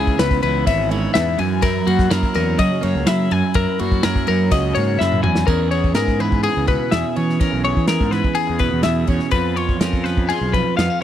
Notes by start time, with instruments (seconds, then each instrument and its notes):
Already playing: fingered electric bass C#2, clean electric guitar C#3 E3 C#4 E4 G#4
0.07 kick
0.19 fingered electric bass C#2, clean electric guitar B3 B4, snare, ride
0.31 kick
0.43 fingered electric bass C#2, clean electric guitar E3 E4 B4, ride
0.67 fingered electric bass G#1, clean electric guitar C#4 E5, kick, ride
0.90 clean electric guitar G#2 E4 C#5, ride
1.14 fingered electric bass E2, clean electric guitar B3 E5, snare, ride
1.38 clean electric guitar F#2 G#5, fingered electric bass F#2, ride
1.62 clean electric guitar E4 A#4, kick, ride
1.86 fingered electric bass F#2, clean electric guitar A#3 F#4, ride
1.99 kick, snare
2.10 fingered electric bass F#2, clean electric guitar F#3 E4 A#4, snare, ride
2.23 kick
2.34 fingered electric bass E2, clean electric guitar C#4 A#4, snare, ride
2.58 clean electric guitar C#3 F#4 D#5, fingered electric bass F#3, kick, ride
2.81 fingered electric bass F#2, clean electric guitar A#3 C#5, ride
2.95 fingered electric bass C#2
3.06 fingered electric bass F#3, clean electric guitar E4 E5, snare, ride
3.31 clean electric guitar F#2 G#5, fingered electric bass F#2, ride
3.54 fingered electric bass F#2, clean electric guitar E4 A#4, kick, ride
3.79 fingered electric bass F#2, clean electric guitar A#3 F#4, ride
3.92 kick
4.03 fingered electric bass F#2, clean electric guitar F#3 E4 A#4, snare, ride
4.16 kick
4.27 fingered electric bass F#2, clean electric guitar C#4 A#4, ride
4.51 fingered electric bass C#2, clean electric guitar C#3 F#4 D#5, kick, ride
4.75 fingered electric bass G#2, clean electric guitar A#3 C#5, ride
4.99 fingered electric bass F#2, clean electric guitar E4 E5, snare
5.12 mid tom
5.22 fingered electric bass E2, clean electric guitar F#2 G#5, mid tom
5.35 snare
5.47 clean electric guitar E2 E3 C#4 G#4 A#4, fingered electric bass E2, kick, crash
5.71 clean electric guitar G#4 C#5, ride
5.84 kick
5.95 fingered electric bass G#2, clean electric guitar G#4 A#4, snare, ride
6.08 kick
6.20 clean electric guitar E3 B4, ride
6.32 kick
6.43 clean electric guitar G#4, ride
6.57 fingered electric bass C#2
6.68 clean electric guitar B2 B4, kick, ride
6.91 fingered electric bass E2, clean electric guitar G#4 E5, snare, ride
7.16 fingered electric bass E3, clean electric guitar C#4 C#5, ride
7.29 snare
7.40 clean electric guitar E2 C#4 A#4, kick, ride
7.53 fingered electric bass B1
7.64 clean electric guitar G#4 C#5, ride
7.77 fingered electric bass E3, kick
7.88 clean electric guitar G#4 A#4, snare, ride
8.01 fingered electric bass G#2, kick
8.11 clean electric guitar E3 B4, snare, ride
8.24 kick
8.35 clean electric guitar G#4, ride
8.50 fingered electric bass E2
8.59 clean electric guitar B2 B4, kick, ride
8.73 fingered electric bass E2
8.83 fingered electric bass E2, clean electric guitar G#4 E5, snare, ride
9.07 fingered electric bass E2, clean electric guitar C#4 C#5, kick, ride
9.19 snare
9.31 fingered electric bass F2, clean electric guitar F2 B3 B4, kick, ride
9.56 clean electric guitar F4 C#5, ride
9.69 kick
9.80 fingered electric bass F2, clean electric guitar C#4 A#4, snare, ride
9.93 kick
10.04 clean electric guitar F3 B4, snare, ride
10.17 kick
10.29 clean electric guitar F4 G#4, ride
10.41 fingered electric bass B1
10.53 clean electric guitar F2 B4, kick, ride
10.77 fingered electric bass F2, clean electric guitar B3 F5, snare, ride
10.90 clean electric guitar C#4